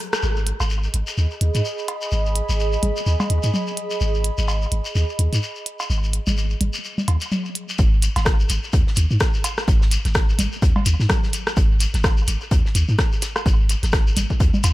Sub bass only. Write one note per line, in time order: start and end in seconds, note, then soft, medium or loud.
0.23 0.53 G#1 medium
0.60 0.88 G#1 medium
0.94 1.03 G#1 medium
1.18 1.26 D#2 medium
1.41 1.50 D#2 loud
1.55 1.61 G#2 medium
2.12 2.42 G#1 medium
2.49 2.77 G#1 medium
2.83 2.92 G#1 medium
3.06 3.15 D#2 medium
3.30 3.39 D#2 loud
3.44 3.50 G#2 medium
4.01 4.30 G#1 medium
4.38 4.66 G#1 medium
4.72 4.81 G#1 medium
4.95 5.04 D#2 medium
5.19 5.28 D#2 loud
5.33 5.39 G#2 medium
5.90 6.19 G#1 loud
6.27 6.55 G#1 medium
6.61 6.70 G#1 medium
7.08 7.17 D#2 loud
7.79 8.08 G#1 loud
8.16 8.44 G#1 medium
8.50 8.59 G#1 medium
8.73 8.82 D#2 medium
8.97 9.06 D#2 loud
9.11 9.17 G#2 medium
9.68 9.97 G#1 loud
10.05 10.33 G#1 medium
10.39 10.48 G#1 medium
10.62 10.71 D#2 medium
10.86 10.95 D#2 loud
11.00 11.06 G#2 medium
11.57 11.86 G#1 loud
11.94 12.22 G#1 medium
12.28 12.37 G#1 medium
12.51 12.60 D#2 medium
12.75 12.84 D#2 loud
12.89 12.95 G#2 medium
13.46 13.75 G#1 loud
13.83 14.11 G#1 medium
14.17 14.25 G#1 medium
14.40 14.49 D#2 medium
14.64 14.73 D#2 loud